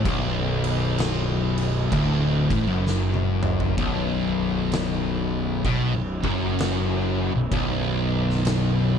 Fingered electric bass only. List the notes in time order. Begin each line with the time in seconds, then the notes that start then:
0.05 B0
1.92 D1
2.50 A1
2.67 F#1
3.78 B0
5.64 B1
5.94 B0
6.23 F#1
7.34 B0
7.52 B0